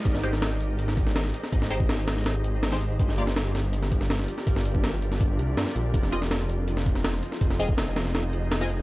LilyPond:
<<
  \new Staff \with { instrumentName = "Synth stab" } { \time 4/4 \key f \dorian \tempo 4 = 163 r8 <aes ees' g' c''>16 r2. r16 | r8 <aes ees' g' c''>16 r2 r8 <aes ees' g' c''>16 r8 | r8 <bes f' g' d''>16 r2. r16 | r1 |
r8 <c' f' aes' ees''>16 r2. r16 | r8 <c' f' aes' ees''>16 r2 r8 <c' f' aes' ees''>16 r8 | }
  \new Staff \with { instrumentName = "Detuned saw bass" } { \clef bass \time 4/4 \key f \dorian aes,,4. aes,,2 r8 | aes,,4. aes,,2 aes,,8 | g,,4. g,,2 r8 | g,,4. g,,4 c,8 g,8 bes,,8 |
f,,4. f,,2 r8 | f,,4. f,,2 f,,8 | }
  \new DrumStaff \with { instrumentName = "Drums" } \drummode { \time 4/4 <hh bd>16 sn16 hh16 sn16 <hh sn>8 hh8 hh16 sn16 <hh bd>16 sn16 <hh sn>16 sn16 hh16 sn16 | <hh bd>16 sn16 hh16 bd16 <hh sn>8 <hh sn>16 sn16 <hh sn>8 hh8 <hh sn>16 sn16 hh8 | <hh bd>16 sn16 hh16 sn16 <hh sn>8 <hh sn>8 hh16 sn16 <hh bd>16 sn16 <hh sn>16 sn16 hh16 sn16 | <hh bd>16 sn16 hh16 bd16 <hh sn>8 hh16 sn16 <hh bd>8 hh8 <hh sn>16 sn16 hh8 |
<hh bd>16 sn16 hh16 sn16 <hh sn>8 hh8 hh16 sn16 <hh bd>16 sn16 <hh sn>16 sn16 hh16 sn16 | <hh bd>16 sn16 hh16 bd16 <hh sn>8 <hh sn>16 sn16 <hh sn>8 hh8 <hh sn>16 sn16 hh8 | }
>>